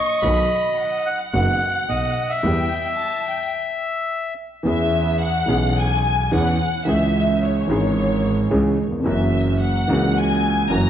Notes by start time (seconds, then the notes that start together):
Already playing: D#5 C#6
0.22 B1 B2 D#3 F#3 B3 F#4 B5
0.78 F#5
1.06 F#5
1.33 F#1 F#2 D#3 F#3 B3 F#4 F#5
1.89 B1 B2 D#5
2.30 E5
2.43 E2 E3 G3 B3 G4 G5
2.99 A5
3.27 G5
4.63 E2 E3 B3 C#4 G#4 E5
5.22 F#5
5.46 B1 B2 E3 B3 C#4
5.50 G#4
5.78 G#5
6.31 E2 E3 B3 C#4 G#4 F#5
6.85 C#2 C#3 E3 G#3 C#4 G#4 E5
7.42 C#5
7.67 G#1 G#2 E3 G#3 C#4
7.71 G#4
8.50 C#2 C#3 E3 G#3 C#4 G#4
8.86 D#2
8.92 E2
8.99 F2
9.03 F#1 F#2 E3 F#3 A#3 C#4 F#4 E5
9.61 F#5
9.87 C#2 C#3 E3 A#3 C#4
9.91 F#4
10.17 G#5
10.70 F#1 F#2 E3 F#3 A#3 C#4 F#4 A#5